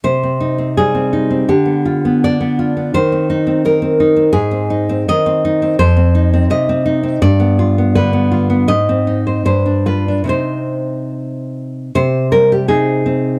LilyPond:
\new Staff \with { instrumentName = "Nylon-string guitar" } { \time 2/4 \key c \minor \tempo 4 = 82 << { c''4 aes'4 | g'4 d''4 | c''4 bes'4 | aes'4 ees''4 |
c''4 ees''4 | d''4 b'4 | ees''4 c''8 b'8 | c''4 r4 |
c''8 bes'16 g'16 aes'4 | } \\ { c16 c'16 ees'16 c'16 g16 c'16 ees'16 c'16 | d16 b16 f'16 b16 d'16 b16 f'16 b16 | ees16 c'16 ees'16 c'16 ees'16 c'16 ees'16 c'16 | aes,16 c'16 ees'16 c'16 ees16 c'16 ees'16 c'16 |
f,16 c'16 ees'16 c'16 c16 c'16 ees'16 c'16 | g,16 b16 f'16 b16 d16 b16 f'16 b16 | aes,16 c'16 ees'16 c''16 g,16 d'16 f'16 d'16 | <c c' ees'>2 |
c8 g8 <c' ees'>8 c'8 | } >> }